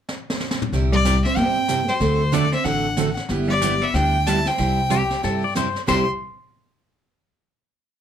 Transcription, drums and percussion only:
0.09 snare
0.30 snare
0.40 snare
0.51 snare
0.62 mid tom
0.73 brush sweep, snare
1.05 snare, hi-hat pedal
1.25 snare
1.37 brush sweep, snare
1.68 snare, hi-hat pedal
1.88 snare
2.00 brush sweep, snare
2.33 snare, hi-hat pedal
2.52 snare
2.65 brush sweep, snare
2.97 snare, hi-hat pedal
3.17 snare
3.28 brush sweep, snare
3.61 snare, hi-hat pedal
3.94 brush sweep, snare
4.26 snare, hi-hat pedal
4.46 snare
4.58 brush sweep, snare
4.90 snare, hi-hat pedal
5.10 snare
5.23 brush sweep, snare
5.55 snare, hi-hat pedal
5.76 snare
5.88 snare, china

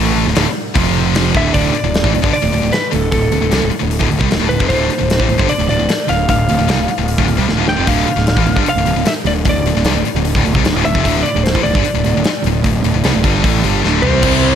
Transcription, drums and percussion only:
0.28 snare
0.35 snare, open hi-hat
0.76 kick, open hi-hat
1.15 snare, open hi-hat
1.35 kick
1.54 kick, open hi-hat
1.75 open hi-hat
1.94 snare, open hi-hat
2.04 kick
2.15 open hi-hat
2.24 kick
2.34 open hi-hat
2.53 open hi-hat
2.73 snare, open hi-hat
2.93 open hi-hat
3.12 kick, open hi-hat
3.32 open hi-hat
3.51 snare, open hi-hat
3.71 open hi-hat
3.91 open hi-hat
4.01 kick
4.11 open hi-hat
4.21 kick
4.31 snare, open hi-hat
4.51 open hi-hat
4.60 kick
4.70 kick, open hi-hat
4.90 open hi-hat
5.10 snare, open hi-hat
5.20 kick
5.29 open hi-hat
5.39 kick
5.49 open hi-hat
5.69 open hi-hat
5.89 snare, open hi-hat
6.09 open hi-hat
6.29 kick, open hi-hat
6.49 open hi-hat
6.69 snare, open hi-hat
6.89 open hi-hat
7.08 open hi-hat
7.18 kick
7.28 open hi-hat
7.49 snare
7.68 snare
7.87 kick, open hi-hat
8.07 open hi-hat
8.18 snare
8.27 snare, open hi-hat
8.37 kick
8.47 open hi-hat
8.56 kick
8.66 open hi-hat
8.86 open hi-hat
9.05 snare, open hi-hat
9.26 open hi-hat
9.45 kick, open hi-hat
9.66 open hi-hat
9.77 snare
9.85 snare, open hi-hat
10.05 open hi-hat
10.25 open hi-hat
10.35 kick
10.46 open hi-hat
10.55 kick
10.65 snare, open hi-hat
10.85 open hi-hat
10.95 kick
11.05 kick, open hi-hat
11.26 open hi-hat
11.46 snare, open hi-hat
11.55 kick
11.66 open hi-hat
11.75 kick
11.85 open hi-hat
12.04 open hi-hat
12.24 snare, open hi-hat
12.44 open hi-hat
12.64 kick, open hi-hat
12.84 open hi-hat
13.04 snare, open hi-hat
13.24 kick, open hi-hat
13.44 kick, open hi-hat
13.64 open hi-hat
13.84 snare
14.03 floor tom
14.23 kick, crash

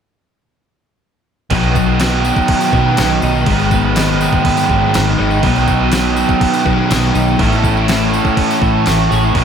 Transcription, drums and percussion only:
1.50 kick, tambourine, crash
1.63 tambourine
1.75 kick, tambourine
2.00 snare, tambourine, crash
2.25 tambourine
2.37 kick, tambourine
2.48 kick, tambourine, crash
2.61 tambourine
2.73 kick
2.97 snare, tambourine, crash
3.22 tambourine
3.35 tambourine
3.46 kick, tambourine, crash
3.59 tambourine
3.71 kick, tambourine
3.96 snare, tambourine, crash
4.21 tambourine
4.33 kick
4.45 kick, tambourine, crash
4.57 tambourine
4.70 kick
4.94 snare, tambourine, crash
5.31 tambourine
5.43 kick, tambourine, crash
5.55 tambourine
5.67 kick, tambourine
5.92 snare, tambourine, crash
6.17 tambourine
6.29 kick, tambourine
6.41 kick, tambourine, crash
6.54 tambourine
6.66 kick
6.91 snare, tambourine, crash
7.15 tambourine
7.39 kick, tambourine, crash
7.52 tambourine
7.64 kick, tambourine
7.77 tambourine
7.88 snare, tambourine, crash
8.01 tambourine
8.14 tambourine
8.25 kick, tambourine
8.37 kick, tambourine, crash
8.51 tambourine
8.62 kick, tambourine
8.86 snare, tambourine, crash
9.12 tambourine
9.24 tambourine
9.35 kick, tambourine, crash

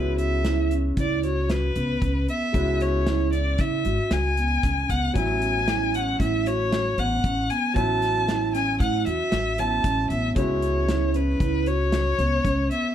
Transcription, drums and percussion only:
0.18 closed hi-hat
0.45 snare, closed hi-hat
0.71 closed hi-hat
0.97 kick, closed hi-hat
1.23 closed hi-hat
1.50 snare, closed hi-hat
1.76 closed hi-hat
2.02 kick, closed hi-hat
2.28 closed hi-hat
2.54 kick, closed hi-hat
2.81 closed hi-hat
3.07 snare, closed hi-hat
3.33 closed hi-hat
3.58 kick, snare, closed hi-hat
3.85 closed hi-hat
4.11 snare, closed hi-hat
4.37 closed hi-hat
4.63 kick, snare, closed hi-hat
4.90 kick, closed hi-hat
5.16 kick, closed hi-hat
5.42 closed hi-hat
5.68 snare, closed hi-hat
5.94 closed hi-hat
6.20 kick, closed hi-hat
6.46 closed hi-hat
6.72 snare, closed hi-hat
6.98 closed hi-hat
7.24 kick, closed hi-hat
7.50 closed hi-hat
7.76 kick, closed hi-hat
8.02 snare, closed hi-hat
8.28 snare, closed hi-hat
8.55 snare, closed hi-hat
8.80 kick, closed hi-hat
9.06 closed hi-hat
9.32 snare, closed hi-hat
9.58 closed hi-hat
9.84 kick, closed hi-hat
10.10 closed hi-hat
10.36 kick, closed hi-hat
10.62 closed hi-hat
10.89 snare, closed hi-hat
11.14 closed hi-hat
11.40 kick, closed hi-hat
11.66 closed hi-hat
11.92 snare, closed hi-hat
12.19 closed hi-hat
12.45 kick, closed hi-hat
12.71 closed hi-hat

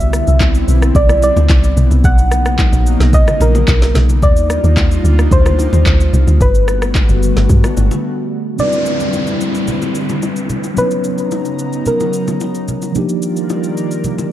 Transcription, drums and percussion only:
0.00 shaker
0.13 cross-stick, shaker
0.27 shaker
0.40 kick, clap, high bongo, shaker
0.55 shaker
0.68 shaker
0.82 cross-stick, shaker
0.95 kick, low conga, shaker
1.09 cross-stick, low bongo, shaker
1.22 high bongo, shaker
1.37 low bongo, shaker
1.50 kick, clap, high bongo, shaker
1.64 shaker
1.77 low conga, shaker
1.91 low bongo, shaker
2.04 kick, low conga, shaker
2.18 shaker
2.31 cross-stick, shaker
2.46 cross-stick, shaker
2.59 kick, clap, high bongo, shaker
2.73 shaker
2.87 shaker
3.00 snare, shaker
3.13 kick, low conga, shaker
3.27 cross-stick, low bongo, shaker
3.41 high bongo, shaker
3.55 low bongo, shaker
3.68 kick, clap, high bongo, shaker
3.82 snare, shaker
3.95 snare, low conga, shaker
4.09 low bongo, shaker
4.23 kick, low conga, shaker
4.36 shaker
4.50 cross-stick, shaker
4.64 shaker
4.77 kick, clap, high bongo, shaker
4.91 shaker
5.05 shaker
5.19 cross-stick, shaker
5.31 kick, low conga, shaker
5.46 cross-stick, low bongo, shaker
5.59 high bongo, shaker
5.73 low bongo, shaker
5.86 kick, clap, high bongo, shaker
6.00 shaker
6.13 low conga, shaker
6.28 low bongo, shaker
6.41 kick, low conga, shaker
6.55 shaker
6.68 cross-stick, shaker
6.82 cross-stick, shaker
6.95 kick, clap, high bongo, shaker
7.09 shaker
7.23 shaker
7.37 snare, shaker
7.50 kick, low conga, shaker
7.64 cross-stick, low bongo, shaker
7.77 high bongo, shaker
7.91 low bongo, shaker
8.59 low conga, shaker
8.73 shaker
8.86 shaker
9.00 shaker
9.13 high bongo, shaker
9.27 shaker
9.41 shaker
9.55 shaker
9.68 low conga, shaker
9.82 low bongo, shaker
9.95 shaker
10.09 low bongo, shaker
10.22 high bongo, shaker
10.36 shaker
10.50 low conga, shaker
10.64 high bongo, shaker
10.77 low conga, shaker
10.91 shaker
11.04 shaker
11.18 shaker
11.31 high bongo, shaker
11.45 shaker
11.59 shaker
11.73 shaker
11.86 low conga, shaker
12.00 low bongo, shaker
12.13 shaker
12.28 low bongo, shaker
12.40 high bongo, shaker
12.55 shaker
12.68 low conga, shaker
12.82 high bongo, shaker
12.95 low conga, shaker
13.09 shaker
13.22 shaker
13.36 shaker
13.50 high bongo, shaker
13.64 shaker
13.77 shaker
13.91 shaker
14.04 low conga, shaker
14.19 low bongo, shaker

